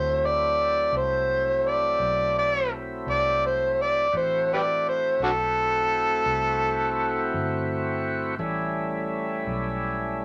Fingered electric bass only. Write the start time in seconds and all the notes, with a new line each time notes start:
Already playing: D2
0.92 C2
1.99 B1
3.06 C2
4.13 A1
5.20 B1
6.26 C2
7.34 G1
8.39 A1
9.47 B1